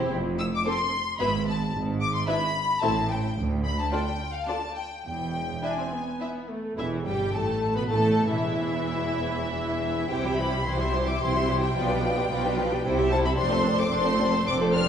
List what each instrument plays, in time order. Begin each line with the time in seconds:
Already playing: double bass section E1, cello section E2, viola section C4 E4, violin section G4 C5
0.11 double bass section F1, cello section F2
0.40 violin section E6
0.55 violin section D6
0.66 viola section C4 A4, violin section A4 C5 C6
1.20 double bass section G#1, cello section G#2, viola section B3 E4, violin section B4 E5 B5
1.47 violin section A5
1.74 double bass section G#1, cello section G#2
2.00 violin section D6
2.14 violin section C6
2.27 viola section D4 E4, violin section B4 E5 B5
2.81 double bass section A1, cello section A2, viola section C4 E4, violin section A4 E5 A5
3.10 violin section G5
3.36 double bass section D2, cello section D2
3.64 violin section B5
3.80 violin section A5
3.91 viola section D4 F4, violin section A4 D5 G5
4.35 violin section F5
4.47 viola section D4 F4, violin section A4 D5 A5
4.75 violin section G5
5.04 double bass section E1, cello section E2, violin section G5
5.63 viola section D4, violin section E4 E5 G#5
5.79 viola section C4
5.92 viola section B3
6.21 violin section E4 E5
6.51 viola section A3
6.78 double bass section E1, cello section E2, viola section E3, violin section E4 E5
7.06 double bass section G1, cello section G2, viola section G3, violin section G4 G5
7.34 double bass section A1, cello section A2, viola section A3, violin section A4 A5
7.75 cello section B2, viola section B3, violin section B4 B5
7.89 double bass section A1, cello section A2, viola section A3, violin section A4 A5
8.30 double bass section E1, cello section E2, viola section E3, violin section E4 E5
10.10 double bass section C2, cello section C3, viola section E3 E4, violin section G4 C5 G5
10.24 viola section G3 G4, violin section E4 E5
10.38 viola section E3 E4, violin section G4 C5 B5
10.52 viola section G3 G4, violin section E4 E5
10.65 double bass section C2, cello section C3, viola section E3 E4, violin section G4 C5 C6
10.79 viola section G3 G4, violin section E4 E5
10.93 viola section E3 E4, violin section G4 C5
11.06 viola section G3 G4, violin section E4 E5 D6
11.19 double bass section C2, cello section C3, viola section E3 E4, violin section G4 C5 C6
11.34 viola section G3 G4, violin section E4 E5
11.48 viola section E3 E4, violin section G4 C5
11.61 viola section G3 G4, violin section E4 E5 G5
11.74 double bass section B1, cello section B2, viola section F3 F4, violin section B4 D5
11.87 viola section G3 D4, violin section G4 B4
12.01 viola section F3 F4, violin section B4 D5
12.15 viola section G3 D4, violin section G4 B4
12.29 double bass section B1, cello section B2, viola section F3 F4, violin section B4 D5
12.44 viola section G3 D4, violin section G4 B4
12.58 viola section F3 F4, violin section B4 D5
12.71 viola section G3 D4, violin section G4 B4
12.85 double bass section C2, cello section C3, viola section G3 E4, violin section E4 C5
12.98 viola section C4 G4, violin section G4 E5
13.11 viola section G3 E4, violin section E4 C5 A5
13.25 viola section C4 G4, violin section G4 E5 B5
13.38 double bass section F1, cello section F2, viola section C4 D4, violin section C5 D5 C6
13.51 viola section A3 C4, violin section A4 C5
13.64 viola section C4 D4, violin section C5 D5
13.78 viola section A3 C4, violin section A4 C5 D6
13.91 double bass section F1, cello section F2, viola section C4 D4, violin section C5 D5 C6
14.06 viola section A3 C4, violin section A4 C5
14.18 viola section C4 D4, violin section C5 D5
14.31 viola section A3 C4, violin section A4 C5
14.46 double bass section F1, cello section F2, viola section C4 D4, violin section C5 D5 D6
14.59 viola section A3 C4, violin section A4 C5
14.73 viola section C4 D4, violin section C5 D5 F6